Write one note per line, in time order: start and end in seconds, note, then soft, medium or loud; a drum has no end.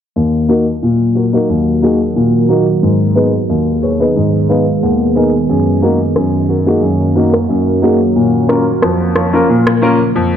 0.16 0.66 D#2 medium
0.16 8.12 D#3 medium
0.16 2.80 F#3 medium
0.16 2.80 A#3 medium
0.16 2.80 F#4 medium
0.16 2.80 A#4 medium
0.49 0.63 A#3 medium
0.49 0.63 D#4 medium
0.49 0.63 F#4 medium
0.49 0.64 A#4 medium
0.82 1.33 A#2 medium
1.15 1.23 F#4 soft
1.15 1.23 A#4 medium
1.33 1.46 A#3 medium
1.33 1.46 D#4 medium
1.33 1.46 F#4 medium
1.33 1.46 A#4 medium
1.49 2.00 D#2 medium
1.82 1.97 A#3 medium
1.82 1.97 D#4 medium
1.82 1.97 F#4 medium
1.82 1.97 G#4 medium
2.16 2.66 A#2 medium
2.49 2.63 A#3 medium
2.49 2.63 D#4 medium
2.49 2.63 F#4 medium
2.49 2.64 A#4 medium
2.83 3.33 G#2 medium
2.83 5.47 G#3 medium
2.83 5.47 B3 medium
2.83 5.47 G#4 medium
2.83 5.47 B4 medium
3.15 3.30 B3 medium
3.15 3.30 D#4 medium
3.15 3.30 G#4 medium
3.15 3.30 B4 medium
3.49 4.00 D#2 medium
3.82 3.89 G#4 soft
3.82 3.90 B4 medium
3.82 3.99 C#5 medium
4.00 4.13 B3 medium
4.00 4.13 D#4 medium
4.00 4.13 G#4 medium
4.00 4.13 B4 medium
4.00 4.15 D#5 medium
4.16 4.66 G#2 medium
4.16 4.47 D#5 medium
4.49 4.63 B3 medium
4.49 4.63 D#4 medium
4.49 4.64 G#4 medium
4.49 4.64 B4 medium
4.49 4.80 F5 medium
4.83 5.33 D#2 medium
4.83 5.14 F#5 medium
5.15 5.30 B3 medium
5.15 5.30 D#4 medium
5.15 5.30 G#4 medium
5.15 5.30 A#4 medium
5.15 5.47 G#5 medium
5.49 6.00 F#2 medium
5.49 8.13 F#2 medium
5.49 8.13 F#3 medium
5.49 8.13 A#3 medium
5.49 8.13 F#4 medium
5.49 8.13 A#4 medium
5.82 5.96 A#3 medium
5.82 5.97 D#4 medium
5.82 5.97 F#4 medium
5.82 5.97 A#4 medium
6.16 6.66 F#2 medium
6.16 cross-stick medium
6.49 6.56 F#4 soft
6.49 6.57 A#4 medium
6.66 6.79 A#3 medium
6.66 6.79 D#4 medium
6.66 6.79 F#4 medium
6.66 6.80 G#4 medium
6.82 7.33 F#2 medium
7.15 7.30 A#3 medium
7.15 7.30 D#4 medium
7.15 7.30 F#4 medium
7.15 7.30 A#4 medium
7.34 cross-stick medium
7.49 7.99 F#2 medium
7.82 7.96 A#3 medium
7.82 7.97 D#4 medium
7.82 7.97 F#4 medium
7.82 7.97 G#4 medium
8.16 8.66 A#2 medium
8.16 10.37 C#3 medium
8.16 10.37 F3 medium
8.16 10.37 A#3 medium
8.16 10.37 F4 medium
8.16 10.37 A#4 medium
8.49 8.63 A#3 medium
8.49 8.63 C#4 medium
8.49 8.63 F4 medium
8.49 8.64 A#4 medium
8.49 cross-stick medium
8.82 9.33 F2 medium
8.82 cross-stick loud
9.15 9.23 F4 soft
9.15 9.23 C#5 medium
9.15 cross-stick medium
9.33 9.46 A#3 medium
9.33 9.46 C#4 medium
9.33 9.46 F4 medium
9.33 9.46 A#4 medium
9.49 9.99 A#2 medium
9.67 cross-stick medium
9.82 9.96 A#3 medium
9.82 9.96 C#4 medium
9.82 9.97 F4 medium
9.82 9.97 A#4 medium
10.16 10.37 F2 medium